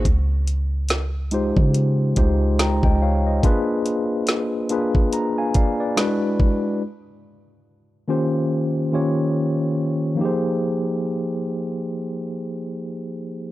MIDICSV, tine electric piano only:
0, 0, Header, 1, 2, 480
1, 0, Start_track
1, 0, Key_signature, -4, "minor"
1, 0, Tempo, 845070
1, 30, Time_signature, 4, 2, 24, 8
1, 7679, End_track
2, 0, Start_track
2, 0, Title_t, "Tine electric piano"
2, 0, Program_c, 0, 4
2, 0, Control_c, 0, 64, 127
2, 37, Control_c, 0, 64, 0
2, 142, Control_c, 0, 64, 127
2, 747, Note_on_c, 0, 56, 85
2, 751, Note_on_c, 0, 63, 78
2, 755, Note_on_c, 0, 65, 79
2, 759, Note_on_c, 0, 67, 82
2, 762, Note_on_c, 0, 72, 101
2, 1076, Note_off_c, 0, 56, 0
2, 1078, Note_off_c, 0, 63, 0
2, 1080, Note_off_c, 0, 65, 0
2, 1082, Note_off_c, 0, 67, 0
2, 1083, Note_off_c, 0, 72, 0
2, 1227, Note_on_c, 0, 56, 78
2, 1231, Note_on_c, 0, 63, 68
2, 1235, Note_on_c, 0, 65, 69
2, 1238, Note_on_c, 0, 67, 72
2, 1242, Note_on_c, 0, 72, 89
2, 1476, Note_off_c, 0, 72, 0
2, 1476, Note_on_c, 0, 82, 66
2, 1479, Note_on_c, 0, 79, 57
2, 1605, Note_off_c, 0, 82, 0
2, 1607, Note_off_c, 0, 79, 0
2, 1615, Note_on_c, 0, 79, 74
2, 1619, Note_on_c, 0, 75, 62
2, 1703, Note_off_c, 0, 56, 0
2, 1705, Note_off_c, 0, 63, 0
2, 1707, Note_off_c, 0, 65, 0
2, 1708, Note_off_c, 0, 67, 0
2, 1708, Note_off_c, 0, 79, 0
2, 1710, Note_off_c, 0, 75, 0
2, 1716, Note_on_c, 0, 77, 78
2, 1720, Note_on_c, 0, 73, 65
2, 1845, Note_off_c, 0, 77, 0
2, 1847, Note_off_c, 0, 73, 0
2, 1855, Note_on_c, 0, 75, 64
2, 1858, Note_on_c, 0, 72, 59
2, 1948, Note_on_c, 0, 58, 114
2, 1952, Note_on_c, 0, 62, 113
2, 1956, Control_c, 0, 64, 0
2, 1956, Note_on_c, 0, 65, 107
2, 1960, Note_on_c, 0, 68, 105
2, 1964, Note_on_c, 0, 71, 127
2, 2042, Control_c, 0, 64, 127
2, 2080, Note_off_c, 0, 75, 0
2, 2082, Note_off_c, 0, 72, 0
2, 2423, Note_off_c, 0, 58, 0
2, 2425, Note_off_c, 0, 62, 0
2, 2427, Note_off_c, 0, 65, 0
2, 2429, Note_off_c, 0, 68, 0
2, 2431, Note_off_c, 0, 71, 0
2, 2668, Note_on_c, 0, 58, 86
2, 2672, Note_on_c, 0, 62, 81
2, 2676, Note_on_c, 0, 65, 84
2, 2680, Note_on_c, 0, 68, 79
2, 2683, Note_on_c, 0, 71, 91
2, 2915, Note_on_c, 0, 82, 68
2, 2917, Note_off_c, 0, 71, 0
2, 2997, Note_off_c, 0, 58, 0
2, 2999, Note_off_c, 0, 62, 0
2, 3000, Note_off_c, 0, 65, 0
2, 3002, Note_off_c, 0, 68, 0
2, 3045, Note_off_c, 0, 82, 0
2, 3056, Note_on_c, 0, 80, 77
2, 3059, Note_on_c, 0, 77, 62
2, 3149, Note_off_c, 0, 77, 0
2, 3149, Note_off_c, 0, 80, 0
2, 3156, Note_on_c, 0, 77, 69
2, 3159, Note_on_c, 0, 74, 63
2, 3285, Note_off_c, 0, 77, 0
2, 3287, Note_off_c, 0, 74, 0
2, 3294, Note_on_c, 0, 74, 67
2, 3298, Note_on_c, 0, 71, 55
2, 3388, Note_on_c, 0, 56, 100
2, 3392, Note_on_c, 0, 62, 82
2, 3395, Note_on_c, 0, 64, 83
2, 3397, Note_off_c, 0, 71, 0
2, 3397, Control_c, 0, 64, 0
2, 3399, Note_on_c, 0, 66, 88
2, 3403, Note_on_c, 0, 71, 102
2, 3503, Control_c, 0, 64, 127
2, 3520, Note_off_c, 0, 74, 0
2, 3788, Note_off_c, 0, 56, 0
2, 3790, Note_off_c, 0, 62, 0
2, 3792, Note_off_c, 0, 64, 0
2, 3794, Note_off_c, 0, 66, 0
2, 3796, Note_off_c, 0, 71, 0
2, 3877, Control_c, 0, 64, 0
2, 3974, Control_c, 0, 64, 127
2, 4588, Note_on_c, 0, 51, 86
2, 4591, Note_on_c, 0, 58, 77
2, 4594, Note_on_c, 0, 61, 80
2, 4597, Note_on_c, 0, 65, 82
2, 4600, Note_on_c, 0, 67, 80
2, 4603, Note_on_c, 0, 72, 98
2, 4916, Note_off_c, 0, 51, 0
2, 4918, Note_off_c, 0, 58, 0
2, 4919, Note_off_c, 0, 61, 0
2, 4921, Note_off_c, 0, 65, 0
2, 4923, Note_off_c, 0, 67, 0
2, 4924, Note_off_c, 0, 72, 0
2, 5067, Note_on_c, 0, 51, 78
2, 5070, Note_on_c, 0, 58, 69
2, 5073, Note_on_c, 0, 61, 66
2, 5077, Note_on_c, 0, 65, 72
2, 5080, Note_on_c, 0, 67, 71
2, 5082, Note_on_c, 0, 73, 86
2, 5543, Note_off_c, 0, 51, 0
2, 5544, Note_off_c, 0, 58, 0
2, 5546, Note_off_c, 0, 61, 0
2, 5547, Note_off_c, 0, 65, 0
2, 5549, Note_off_c, 0, 67, 0
2, 5550, Note_off_c, 0, 73, 0
2, 5765, Note_on_c, 0, 53, 86
2, 5777, Note_on_c, 0, 58, 82
2, 5789, Note_on_c, 0, 63, 78
2, 5798, Control_c, 0, 64, 0
2, 5801, Note_on_c, 0, 67, 80
2, 5814, Note_on_c, 0, 68, 80
2, 5825, Note_on_c, 0, 72, 95
2, 5882, Control_c, 0, 64, 127
2, 7679, Note_off_c, 0, 53, 0
2, 7679, Note_off_c, 0, 58, 0
2, 7679, Note_off_c, 0, 63, 0
2, 7679, Note_off_c, 0, 67, 0
2, 7679, Note_off_c, 0, 68, 0
2, 7679, Note_off_c, 0, 72, 0
2, 7679, End_track
0, 0, End_of_file